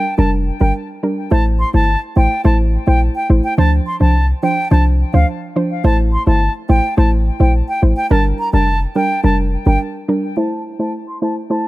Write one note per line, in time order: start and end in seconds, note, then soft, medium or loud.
0.00 0.15 G5 loud
0.18 0.51 F1 loud
0.18 0.57 G3 medium
0.18 0.57 D4 medium
0.18 0.57 A#4 loud
0.18 0.31 A5 medium
0.60 0.72 G1 medium
0.60 1.00 G3 medium
0.60 1.00 D4 medium
0.60 1.00 A#4 medium
0.60 0.73 G5 medium
1.03 1.29 G3 medium
1.03 1.29 D4 medium
1.03 1.29 A#4 medium
1.31 1.64 A1 loud
1.31 1.70 A3 loud
1.31 1.70 E4 medium
1.31 1.71 C5 loud
1.31 1.44 A5 medium
1.60 1.72 C6 medium
1.73 1.96 G1 medium
1.73 1.89 A3 medium
1.73 1.89 E4 medium
1.73 1.89 C5 medium
1.73 1.99 A5 medium
2.16 2.27 A1 medium
2.16 2.32 A3 medium
2.16 2.32 E4 medium
2.16 2.32 C5 medium
2.16 2.42 G5 medium
2.44 2.77 A1 loud
2.44 2.83 A3 medium
2.44 2.84 E4 medium
2.44 2.84 C5 loud
2.44 2.57 A5 medium
2.87 3.09 A#1 medium
2.87 3.26 A3 medium
2.87 3.26 E4 medium
2.87 3.26 C5 medium
2.87 3.00 G5 medium
3.15 3.28 G5 medium
3.29 3.40 A1 loud
3.29 3.55 A3 medium
3.29 3.56 E4 medium
3.29 3.56 C5 medium
3.44 3.57 G5 medium
3.58 3.79 D2 loud
3.58 3.97 F3 loud
3.58 3.97 D4 medium
3.58 3.97 C5 loud
3.58 3.71 A5 loud
3.86 3.99 C6 medium
4.00 4.33 C2 medium
4.00 4.16 F3 medium
4.00 4.16 D4 medium
4.00 4.16 C5 medium
4.00 4.26 A5 medium
4.43 4.58 F3 medium
4.43 4.58 D4 medium
4.43 4.58 C5 medium
4.43 4.68 G5 loud
4.71 5.04 C2 loud
4.71 5.10 F3 medium
4.71 5.10 D4 medium
4.71 5.10 C5 loud
4.71 4.84 A5 medium
5.13 5.24 D2 medium
5.13 5.52 F3 medium
5.13 5.53 D4 medium
5.13 5.53 C5 medium
5.13 5.26 F5 medium
5.56 5.82 F3 medium
5.56 5.82 D4 medium
5.56 5.82 C5 medium
5.84 6.17 A1 loud
5.84 6.23 A3 loud
5.84 6.23 E4 medium
5.84 6.23 C5 loud
5.84 5.97 A5 medium
6.13 6.25 C6 medium
6.26 6.48 G1 loud
6.26 6.42 A3 medium
6.26 6.42 E4 medium
6.26 6.42 C5 medium
6.26 6.52 A5 medium
6.69 6.80 A1 loud
6.69 6.84 A3 medium
6.69 6.84 E4 medium
6.69 6.85 C5 medium
6.69 6.95 G5 loud
6.97 7.30 A1 loud
6.97 7.36 A3 medium
6.97 7.36 E4 medium
6.97 7.37 C5 loud
6.97 7.10 A5 medium
7.40 7.62 A#1 loud
7.40 7.79 A3 medium
7.40 7.79 E4 medium
7.40 7.79 C5 medium
7.40 7.53 G5 medium
7.69 7.81 G5 medium
7.82 7.93 A1 medium
7.82 8.08 A3 medium
7.82 8.08 E4 medium
7.82 8.09 C5 medium
7.97 8.09 G5 medium
8.10 8.32 G1 loud
8.10 8.50 G3 loud
8.10 8.50 D4 medium
8.10 8.50 A#4 loud
8.10 8.23 A5 loud
8.39 8.52 A#5 medium
8.53 8.86 F1 medium
8.53 8.68 G3 medium
8.53 8.69 D4 medium
8.53 8.69 A#4 medium
8.53 8.79 A5 medium
8.95 9.11 G3 medium
8.95 9.11 D4 medium
8.95 9.11 A#4 medium
8.95 9.21 G5 medium
9.23 9.56 F1 medium
9.23 9.63 G3 medium
9.23 9.63 D4 medium
9.23 9.63 A#4 loud
9.23 9.37 A5 medium
9.66 9.77 G1 medium
9.66 10.05 G3 medium
9.66 10.05 D4 medium
9.66 10.06 A#4 medium
9.66 9.79 G5 medium
10.08 10.35 G3 medium
10.08 10.35 D4 medium
10.08 10.35 A#4 medium
10.37 10.76 A3 loud
10.37 10.76 E4 medium
10.37 10.76 C5 loud
10.37 10.63 A5 medium
10.79 10.95 A3 medium
10.79 10.95 E4 medium
10.79 10.95 C5 medium
10.79 10.92 A5 medium
11.08 11.21 C6 medium
11.22 11.37 A3 medium
11.22 11.37 E4 medium
11.22 11.37 C5 medium
11.22 11.35 A5 medium
11.50 11.68 A3 medium
11.50 11.68 E4 medium
11.50 11.68 C5 loud
11.50 11.68 A5 loud